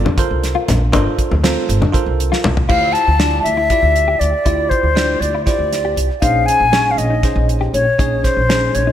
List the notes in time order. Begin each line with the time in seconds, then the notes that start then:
0.05 D4, high conga, low conga
0.18 F4 A4 A#4 C5, muted upright bass stroke, kick, closed hi-hat, low conga
0.31 C2
0.44 snare, closed hi-hat
0.55 F4, low conga
0.68 A#1, snare, closed hi-hat, low conga
0.92 G1 D4 F4 A4 A#4 C5, kick, closed hi-hat, high conga
1.19 muted upright bass stroke, kick, closed hi-hat
1.31 D2, low conga
1.44 C4 F4 A4 A#4 C5, snare, closed hi-hat
1.69 G1, closed hi-hat
1.82 D4, high conga, low conga
1.92 F4 A4 A#4 C5, muted upright bass stroke, kick, closed hi-hat
2.06 C2
2.20 closed hi-hat
2.32 F4, snare
2.44 C2, mid tom, low conga
2.57 floor tom, low conga
2.69 D2 E4 F4 G4 C5 F5, kick, crash
2.93 A5, closed hi-hat
3.08 D2
3.19 D4 E4 F4 G4 D5, snare, closed hi-hat
3.43 D2 E5, closed hi-hat
3.57 E4
3.70 E4 F4 G4 D5, kick, closed hi-hat
3.82 D2
3.96 closed hi-hat
4.08 G4
4.19 D2 D5, closed hi-hat
4.45 D2 E4 F4 G4 D5, kick, closed hi-hat
4.70 C5, kick, closed hi-hat
4.83 D2
4.95 D4 E4 F4 G4 D5, snare, closed hi-hat
5.21 D2 D5, closed hi-hat
5.35 E4
5.46 E4 F4 G4 C5 D5, kick, snare, closed hi-hat
5.59 D2
5.73 snare, closed hi-hat
5.85 G4
5.96 C2, closed hi-hat
6.22 A#1 C#4 D#4 G#4 C5 F5, kick, closed hi-hat
6.46 G#5, closed hi-hat
6.60 A#1
6.72 C#4 D#4 G#4 C#5, snare, closed hi-hat
6.91 F5
6.98 A#1 D#5, closed hi-hat
7.10 D#4
7.23 C#4 D#4 G#4 C5, kick, snare, closed hi-hat
7.36 A#1
7.49 closed hi-hat
7.61 G4
7.73 A#1 C#5, closed hi-hat
7.98 A#1 C#4 D#4 G#4 C#5, kick, closed hi-hat
8.24 C5, kick, snare, closed hi-hat
8.37 A#1
8.49 C#4 D#4 G#4 C5, snare, closed hi-hat
8.75 A#1 C#5, closed hi-hat
8.87 D#4